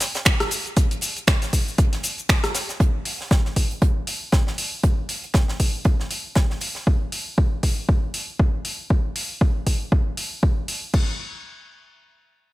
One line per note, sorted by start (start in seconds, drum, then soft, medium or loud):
0.00 snare medium
0.00 closed hi-hat medium
0.00 open hi-hat loud
0.00 shaker medium
0.15 snare loud
0.15 closed hi-hat medium
0.15 closed hi-hat soft
0.15 shaker soft
0.25 finger snap loud
0.25 kick loud
0.25 snare loud
0.25 closed hi-hat medium
0.25 shaker soft
0.40 cross-stick medium
0.40 snare soft
0.40 closed hi-hat medium
0.51 closed hi-hat medium
0.51 open hi-hat loud
0.51 shaker medium
0.66 closed hi-hat soft
0.66 shaker soft
0.76 kick loud
0.76 closed hi-hat medium
0.76 shaker soft
0.91 closed hi-hat soft
0.91 shaker soft
1.01 closed hi-hat medium
1.01 open hi-hat loud
1.01 shaker medium
1.17 closed hi-hat soft
1.17 shaker soft
1.27 finger snap loud
1.27 kick loud
1.27 snare loud
1.27 closed hi-hat medium
1.27 shaker soft
1.42 snare medium
1.42 closed hi-hat soft
1.42 shaker soft
1.53 kick medium
1.53 closed hi-hat medium
1.53 open hi-hat loud
1.53 shaker medium
1.68 shaker soft
1.78 kick loud
1.78 closed hi-hat medium
1.78 shaker soft
1.93 snare soft
1.93 closed hi-hat soft
2.03 closed hi-hat medium
2.03 open hi-hat loud
2.03 shaker medium
2.18 closed hi-hat soft
2.18 shaker soft
2.29 finger snap loud
2.29 kick loud
2.29 snare loud
2.29 closed hi-hat medium
2.29 shaker soft
2.44 cross-stick medium
2.44 snare soft
2.44 closed hi-hat soft
2.44 shaker soft
2.55 snare medium
2.55 closed hi-hat medium
2.55 open hi-hat loud
2.55 shaker medium
2.69 snare soft
2.69 closed hi-hat soft
2.69 shaker soft
2.80 kick loud
2.80 closed hi-hat medium
3.05 open hi-hat medium
3.05 open hi-hat loud
3.21 snare soft
3.31 kick loud
3.31 snare loud
3.31 closed hi-hat medium
3.45 snare soft
3.56 kick medium
3.56 closed hi-hat medium
3.56 open hi-hat loud
3.71 closed hi-hat soft
3.82 kick loud
3.82 closed hi-hat medium
4.07 closed hi-hat medium
4.07 open hi-hat loud
4.32 kick loud
4.32 snare loud
4.32 closed hi-hat medium
4.47 snare soft
4.58 closed hi-hat medium
4.58 open hi-hat loud
4.83 kick loud
4.83 closed hi-hat medium
5.09 closed hi-hat medium
5.09 open hi-hat medium
5.24 closed hi-hat soft
5.34 kick loud
5.34 snare loud
5.34 closed hi-hat medium
5.48 snare medium
5.60 kick medium
5.60 closed hi-hat medium
5.60 open hi-hat medium
5.85 kick loud
5.85 closed hi-hat medium
6.00 snare soft
6.11 closed hi-hat medium
6.11 open hi-hat loud
6.35 kick loud
6.35 snare loud
6.35 closed hi-hat medium
6.50 snare soft
6.61 closed hi-hat medium
6.61 open hi-hat medium
6.75 snare soft
6.87 kick loud
7.12 open hi-hat medium
7.38 kick loud
7.63 kick medium
7.63 open hi-hat medium
7.89 kick loud
8.14 open hi-hat loud
8.39 kick loud
8.65 open hi-hat medium
8.90 kick loud
9.16 open hi-hat loud
9.41 kick loud
9.67 kick medium
9.67 open hi-hat medium
9.92 kick loud
10.17 open hi-hat loud
10.43 kick loud
10.68 open hi-hat medium
10.94 kick medium
10.94 crash medium